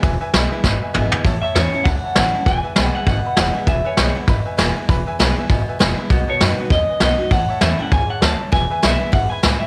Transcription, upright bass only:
X:1
M:4/4
L:1/8
Q:"Swing" 1/4=198
K:E
V:1 name="Upright bass" clef=bass
E,,, z B,,, z G,,, z G,,, z | A,,, z E,, z C,, z A,,, z | E,,, z B,,, z G,,, z E,,, z | E,,, z B,,, z G,,, z E,,, z |
E,,, z B,,, z G,,, z E,,, z | B,,, z F,, z D,, z B,,, z | A,,, z E,, z C,, z =D,, z | E,,, z B,,, z G,,, z C,, z |]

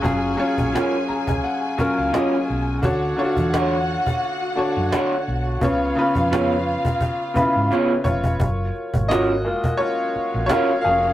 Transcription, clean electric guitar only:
X:1
M:4/4
L:1/8
Q:"Swing 16ths" 1/4=86
K:F#
V:1 name="Clean electric guitar"
z2 [CEAc] z3 [CEAc] z | z2 [=A,=DFc] z3 [A,DFc] z | z2 [B,EGc] z3 [B,EGc] z | z2 [CEAc] z3 [CEAc] z |]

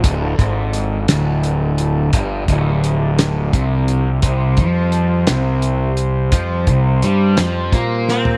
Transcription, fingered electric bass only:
X:1
M:6/8
L:1/8
Q:3/8=57
K:Dm
V:1 name="Fingered electric bass" clef=bass
D,,, ^G,,,2 D,,,3 | G,,, D,,,3 C,,2 | C,, F,,2 C,,3 | F,, C,, G,, F,, B,,2 |]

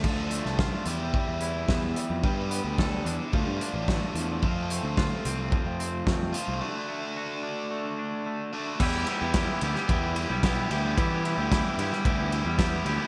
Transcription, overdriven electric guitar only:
X:1
M:4/4
L:1/16
Q:1/4=110
K:Ephr
V:1 name="Overdriven electric guitar"
[F,A,DA]6 [E,B,EG]8- [E,B,EG]2 | [B,DG]8 [F,A,DF]8 | [F,A,CF]12- [F,A,CF]2 [F,A,CF]2 | [A,D^F]12- [A,DF]2 [A,DF]2 |
[G,B,EG]3 [B,EG] [G,B,EG]2 [G,B,EG]2 [G,B,EG]2 [G,B,EG]2 [G,B,EG]2 [G,B,EG] [B,EG] | [G,B,EG]3 [B,EG] [G,B,EG]2 [G,B,EG]2 [G,B,EG]2 [G,B,EG]2 [G,B,EG]2 [G,B,EG] [B,EG] |]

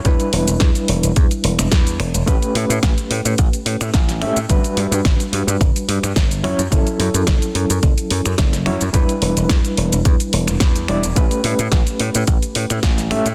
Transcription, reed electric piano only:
X:1
M:4/4
L:1/8
Q:"Swing 16ths" 1/4=108
K:Amix
V:1 name="Reed electric piano"
[G,DEB]6- [G,DEB] z | [A,CGB]6- [A,CGB] [A,CGe] | [G,DFB]6- [G,DFB] [F,CEc] | [F,CEA]6- [F,CEA] [F,CEc] |
[G,DEB]6- [G,DEB] [G,DEd] | [A,CGB]6- [A,CGB] [A,CGe] |]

